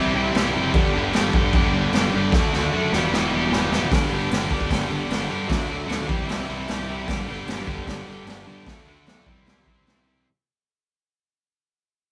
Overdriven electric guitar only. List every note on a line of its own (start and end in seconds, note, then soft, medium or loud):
0.00 0.14 C3 medium
0.00 0.15 E3 medium
0.00 0.15 G3 medium
0.00 0.16 E4 medium
0.00 0.16 G4 loud
0.15 0.34 C3 loud
0.15 0.34 E3 loud
0.15 0.35 G3 loud
0.15 0.36 E4 loud
0.15 0.37 G4 loud
0.35 0.54 C3 medium
0.35 0.54 E3 medium
0.35 0.55 G3 medium
0.35 0.56 E4 medium
0.35 0.56 G4 medium
0.55 0.74 C3 medium
0.55 0.74 E3 medium
0.55 0.74 G3 medium
0.55 0.75 E4 loud
0.55 0.75 G4 medium
0.74 0.93 G2 loud
0.74 0.94 D3 loud
0.74 0.95 G3 loud
0.74 0.95 B3 loud
0.74 0.96 D4 loud
0.74 0.96 G4 loud
0.94 1.12 G2 medium
0.94 1.13 D3 medium
0.94 1.14 G3 medium
0.94 1.14 B3 medium
0.94 1.15 D4 medium
0.94 1.16 G4 medium
1.14 1.32 G2 medium
1.14 1.33 D3 medium
1.14 1.34 G3 loud
1.14 1.34 B3 medium
1.14 1.34 D4 loud
1.14 1.36 G4 medium
1.33 1.51 G2 loud
1.33 1.52 D3 loud
1.33 1.53 G3 loud
1.33 1.54 B3 loud
1.33 1.54 D4 loud
1.33 1.55 G4 loud
1.53 1.72 G2 medium
1.53 1.72 D3 medium
1.53 1.73 G3 medium
1.53 1.74 B3 loud
1.53 1.74 D4 medium
1.53 1.75 G4 loud
1.73 1.93 G2 loud
1.73 1.94 D3 medium
1.73 1.94 G3 loud
1.73 1.95 B3 loud
1.73 1.95 D4 loud
1.73 1.96 G4 loud
1.94 2.12 G2 medium
1.94 2.13 D3 medium
1.94 2.13 G3 medium
1.94 2.14 B3 medium
1.94 2.14 D4 medium
1.94 2.15 G4 loud
2.13 2.32 G2 medium
2.13 2.32 D3 medium
2.13 2.32 G3 medium
2.13 2.33 B3 medium
2.13 2.33 D4 loud
2.13 2.33 G4 loud
2.34 2.52 D3 loud
2.34 2.52 A3 loud
2.34 2.53 D4 loud
2.34 2.54 F#4 loud
2.53 2.72 D3 medium
2.53 2.72 A3 medium
2.53 2.73 D4 medium
2.53 2.73 F#4 loud
2.73 2.91 D3 medium
2.73 2.92 A3 loud
2.73 2.92 D4 medium
2.73 2.92 F#4 loud
2.92 3.11 E2 loud
2.92 3.12 B2 medium
2.92 3.13 E3 loud
2.92 3.14 G3 loud
2.92 3.14 B3 loud
2.92 3.15 G4 loud
3.12 3.31 E2 medium
3.12 3.31 B2 medium
3.12 3.32 E3 loud
3.12 3.33 G3 loud
3.12 3.34 B3 medium
3.12 3.34 G4 medium
3.32 3.50 E2 medium
3.32 3.51 B2 loud
3.32 3.52 E3 loud
3.32 3.52 G3 loud
3.32 3.53 B3 loud
3.32 3.53 G4 loud
3.51 3.69 E2 medium
3.51 3.70 B2 medium
3.51 3.71 E3 medium
3.51 3.71 G3 loud
3.51 3.72 B3 medium
3.51 3.73 G4 medium
3.71 3.90 E2 medium
3.71 3.90 B2 medium
3.71 3.90 E3 loud
3.71 3.91 G3 medium
3.71 3.91 B3 medium
3.71 3.91 G4 medium
3.91 4.09 G2 medium
3.91 4.11 D3 loud
3.91 4.11 G3 loud
3.91 4.12 B3 medium
3.91 4.12 D4 loud
3.91 4.13 G4 loud
4.11 4.29 G2 medium
4.11 4.30 D3 medium
4.11 4.31 G3 medium
4.11 4.31 B3 medium
4.11 4.32 D4 medium
4.11 4.33 G4 medium
4.31 4.49 G2 medium
4.31 4.50 D3 medium
4.31 4.50 G3 medium
4.31 4.51 B3 medium
4.31 4.51 D4 medium
4.31 4.52 G4 medium
4.50 4.68 G2 medium
4.50 4.68 D3 medium
4.50 4.69 G3 medium
4.50 4.70 B3 medium
4.50 4.70 D4 medium
4.50 4.71 G4 medium
4.69 4.88 G2 loud
4.69 4.88 D3 loud
4.69 4.89 G3 loud
4.69 4.90 B3 loud
4.69 4.90 D4 loud
4.69 4.91 G4 loud
4.89 5.07 G2 medium
4.89 5.08 D3 medium
4.89 5.08 G3 medium
4.89 5.09 B3 medium
4.89 5.09 D4 loud
4.89 5.10 G4 medium
5.08 5.27 G2 medium
5.08 5.28 D3 medium
5.08 5.28 G3 medium
5.08 5.29 B3 medium
5.08 5.29 D4 medium
5.08 5.30 G4 medium
5.28 5.48 G2 medium
5.28 5.45 D3 medium
5.28 5.47 G3 medium
5.28 5.48 B3 medium
5.28 5.47 D4 medium
5.28 5.49 G4 medium
5.46 5.67 D3 loud
5.46 5.67 F#3 medium
5.46 5.68 A3 loud
5.46 5.68 D4 loud
5.46 5.69 F#4 loud
5.68 5.86 D3 medium
5.68 5.87 F#3 medium
5.68 5.87 A3 medium
5.68 5.87 D4 medium
5.68 5.88 F#4 medium
5.88 6.06 D3 medium
5.88 6.07 F#3 medium
5.88 6.08 A3 medium
5.88 6.08 D4 medium
5.88 6.08 F#4 medium
6.07 6.26 C3 medium
6.07 6.27 E3 medium
6.07 6.27 G3 loud
6.07 6.28 E4 loud
6.07 6.28 G4 loud
6.27 6.46 C3 loud
6.27 6.47 E3 medium
6.27 6.47 G3 loud
6.27 6.48 E4 loud
6.27 6.49 G4 loud
6.48 6.66 C3 medium
6.48 6.67 E3 medium
6.48 6.68 G3 medium
6.48 6.69 E4 medium
6.48 6.69 G4 medium
6.67 6.87 C3 medium
6.67 6.87 E3 medium
6.67 6.88 G3 medium
6.67 6.89 E4 medium
6.67 6.89 G4 medium
6.88 7.06 C3 medium
6.88 7.07 E3 medium
6.88 7.06 G3 medium
6.88 7.08 E4 loud
6.88 7.08 G4 medium
7.06 7.26 G2 medium
7.06 7.27 D3 medium
7.06 7.27 G3 medium
7.06 7.27 B3 medium
7.06 7.28 D4 loud
7.06 7.29 G4 loud
7.27 7.45 G2 medium
7.27 7.46 D3 medium
7.27 7.46 G3 medium
7.27 7.47 B3 medium
7.27 7.47 D4 medium
7.27 7.48 G4 medium
7.46 7.66 G2 medium
7.46 7.66 D3 medium
7.46 7.66 G3 medium
7.46 7.67 B3 medium
7.46 7.67 D4 medium
7.46 7.68 G4 medium
7.67 7.85 G2 medium
7.67 7.86 D3 medium
7.67 7.87 G3 medium
7.67 7.87 B3 medium
7.67 7.87 D4 medium
7.67 7.89 G4 medium
7.86 8.06 G2 medium
7.86 8.06 D3 loud
7.86 8.07 G3 loud
7.86 8.07 B3 medium
7.86 8.08 D4 medium
7.86 8.09 G4 loud
8.07 8.24 G2 medium
8.07 8.25 D3 medium
8.07 8.26 G3 medium
8.07 8.27 B3 medium
8.07 8.27 D4 medium
8.07 8.28 G4 medium
8.25 8.45 G2 medium
8.25 8.46 D3 medium
8.25 8.46 G3 medium
8.25 8.47 B3 medium
8.25 8.48 D4 medium
8.25 8.48 G4 medium
8.46 8.66 G2 medium
8.46 8.66 D3 medium
8.46 8.66 G3 medium
8.46 8.66 B3 medium
8.46 8.67 D4 medium
8.46 8.67 G4 medium
8.67 8.86 D3 medium
8.67 8.86 A3 medium
8.67 8.87 D4 loud
8.67 8.87 F#4 loud
8.87 9.05 D3 medium
8.87 9.06 A3 medium
8.87 9.06 D4 medium
8.87 9.07 F#4 medium
9.06 9.25 D3 medium
9.06 9.26 A3 medium
9.06 9.26 D4 medium
9.06 9.26 F#4 medium
9.27 9.46 C3 medium
9.27 9.46 E3 medium
9.27 9.47 G3 loud
9.27 9.48 C4 medium
9.27 9.48 E4 medium
9.47 9.65 C3 medium
9.47 9.66 E3 medium
9.47 9.66 G3 medium
9.47 9.67 C4 medium
9.47 9.67 E4 loud
9.66 9.85 C3 medium
9.66 9.86 E3 medium
9.66 9.87 G3 medium
9.66 9.87 C4 medium
9.66 9.88 E4 medium
9.86 10.05 C3 medium
9.86 10.05 E3 medium
9.86 10.06 G3 medium
9.86 10.07 C4 medium
9.86 10.07 E4 medium
10.06 10.25 C3 medium
10.06 10.25 E3 medium
10.06 10.26 G3 medium
10.06 10.26 C4 medium
10.06 10.26 E4 medium